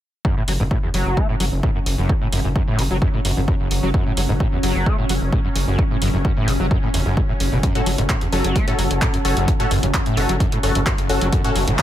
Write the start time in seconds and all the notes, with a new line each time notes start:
0.25 F#2 F#3 C#4, kick
0.37 A2
0.48 F#1 F#3, open hi-hat
0.60 F#1 G#2
0.71 A2, kick
0.83 E2
0.94 F#1 F#3, open hi-hat
1.06 F#1
1.17 A3, kick
1.29 A2
1.40 F#1 F#3, open hi-hat
1.52 F#1
1.63 A2, kick
1.75 F#2
1.86 F#1, open hi-hat
1.98 F#1 F#2
2.09 E2, kick
2.21 A2
2.33 F#1 F#2, open hi-hat
2.44 F#1 F#2
2.56 F#2, kick
2.68 A2
2.79 F#1 C#3, open hi-hat
2.91 F#1 F#3
3.02 F#2, kick
3.14 A2
3.25 F#1 F#2, open hi-hat
3.37 F#1 F#2
3.48 F#2, kick
3.60 F#1
3.71 F#1, open hi-hat
3.83 F#1 F#3
3.94 F#2, kick
4.06 A2
4.17 F#1 F#3, open hi-hat
4.29 F#1 G#2
4.40 A2, kick
4.52 E2
4.63 F#1 F#3, open hi-hat
4.75 F#1
4.86 A3, kick
4.98 A2
5.09 F#1 F#3, open hi-hat
5.21 F#1
5.33 A2, kick
5.45 F#2
5.56 F#1, open hi-hat
5.68 F#1 F#2
5.79 E2, kick
5.91 A2
6.02 F#1 F#2, open hi-hat
6.14 F#1 F#2
6.25 F#2, kick
6.37 A2
6.48 F#1 C#3, open hi-hat
6.60 F#1 F#3
6.71 F#2, kick
6.83 A2
6.94 F#1 E2, open hi-hat
7.06 F#1 F#2
7.17 G#2, kick
7.29 A2
7.40 F#1, open hi-hat
7.52 F#1 B2
7.63 F#2, kick, closed hi-hat
7.75 A2 C#4 F#4 A4, closed hi-hat
7.86 F#1 F#3, open hi-hat
7.98 F#1 G#2, closed hi-hat
8.09 A2, kick, clap, closed hi-hat
8.21 E2, closed hi-hat
8.32 F#1 F#3 C#4 F#4 A4, open hi-hat
8.44 F#1, closed hi-hat
8.56 A3, kick, closed hi-hat
8.68 A2 C#4 F#4 A4, closed hi-hat
8.79 F#1 F#3, open hi-hat
8.91 F#1, closed hi-hat
9.02 A2, kick, clap, closed hi-hat
9.14 F#2, closed hi-hat
9.25 F#1 C#4 F#4 A4, open hi-hat
9.37 F#1 F#2, closed hi-hat
9.48 E2, kick, closed hi-hat
9.60 A2 C#4 F#4 A4, closed hi-hat
9.71 F#1 F#2, open hi-hat
9.83 F#1 F#2, closed hi-hat
9.94 F#2, kick, clap, closed hi-hat
10.06 A2, closed hi-hat
10.17 F#1 C#3 C#4 F#4 A4, open hi-hat
10.29 F#1 F#3, closed hi-hat
10.40 F#2, kick, closed hi-hat
10.52 A2, closed hi-hat
10.63 F#1 F#2 C#4 F#4 A4, open hi-hat
10.75 F#1 F#2, closed hi-hat
10.86 F#2, kick, clap, closed hi-hat
10.98 F#1, closed hi-hat
11.09 F#1 C#4 F#4 A4, open hi-hat
11.21 F#1 F#3, closed hi-hat
11.33 F#2, kick, closed hi-hat, riser
11.44 A2 C#4 F#4 A4, closed hi-hat
11.56 F#1 F#3, open hi-hat
11.68 F#1 G#2, closed hi-hat
11.79 A2, kick, clap, closed hi-hat